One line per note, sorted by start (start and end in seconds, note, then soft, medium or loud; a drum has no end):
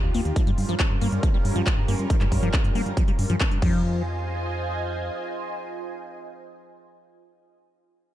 0.00 0.11 D#2 medium
0.00 0.32 D#4 medium
0.00 3.58 F4 medium
0.00 0.33 G4 loud
0.14 0.22 D#2 loud
0.14 0.21 A#3 medium
0.14 open hi-hat medium
0.25 0.32 D#2 medium
0.25 closed hi-hat soft
0.36 0.43 F3 medium
0.36 3.59 G3 medium
0.36 3.59 C#4 medium
0.36 3.59 A#4 loud
0.36 kick loud
0.36 closed hi-hat medium
0.47 0.54 G2 medium
0.47 0.51 G3 medium
0.47 closed hi-hat soft
0.58 0.65 G2 loud
0.58 open hi-hat loud
0.69 0.76 G2 medium
0.69 0.75 F3 medium
0.69 closed hi-hat medium
0.80 0.84 C4 loud
0.80 kick loud
0.80 clap loud
0.80 closed hi-hat medium
0.91 0.98 G2 medium
1.01 1.09 G2 loud
1.01 1.08 A#3 medium
1.01 open hi-hat medium
1.12 1.19 G2 medium
1.12 closed hi-hat medium
1.23 1.30 F3 medium
1.23 kick loud
1.23 closed hi-hat medium
1.34 1.41 G1 medium
1.34 1.38 G3 medium
1.45 1.52 G2 loud
1.45 open hi-hat loud
1.56 1.63 G2 medium
1.56 1.62 F3 medium
1.56 closed hi-hat medium
1.67 1.70 C4 loud
1.67 kick loud
1.67 clap loud
1.67 closed hi-hat medium
1.77 1.85 G2 medium
1.88 1.95 G2 loud
1.88 1.95 A#3 medium
1.88 open hi-hat medium
1.99 2.06 G2 medium
1.99 closed hi-hat medium
2.10 2.17 F3 medium
2.10 kick loud
2.10 closed hi-hat medium
2.21 2.28 G2 medium
2.21 2.25 G3 medium
2.21 clap soft
2.21 closed hi-hat soft
2.32 2.39 G2 loud
2.32 kick medium
2.32 open hi-hat loud
2.43 2.50 G2 medium
2.43 2.49 F3 medium
2.43 closed hi-hat medium
2.54 2.57 C4 loud
2.54 kick loud
2.54 clap loud
2.54 closed hi-hat medium
2.64 2.72 G2 medium
2.64 closed hi-hat soft
2.75 2.82 G2 loud
2.75 2.82 A#3 medium
2.75 open hi-hat medium
2.86 2.93 G2 medium
2.86 closed hi-hat medium
2.97 3.04 F3 medium
2.97 kick loud
2.97 closed hi-hat medium
3.08 3.15 G1 medium
3.08 3.12 G3 medium
3.08 closed hi-hat soft
3.19 3.26 G2 loud
3.19 open hi-hat loud
3.30 3.37 G2 medium
3.30 3.36 F3 medium
3.30 closed hi-hat medium
3.40 3.44 C4 loud
3.40 kick loud
3.40 clap loud
3.40 closed hi-hat medium
3.51 3.59 G2 medium
3.51 closed hi-hat soft
3.62 5.10 F2 loud
3.62 4.03 F3 medium
3.62 7.49 F4 medium
3.62 7.49 C5 medium
3.62 7.49 D#5 medium
3.62 7.49 G#5 medium
3.62 kick loud
3.62 crash medium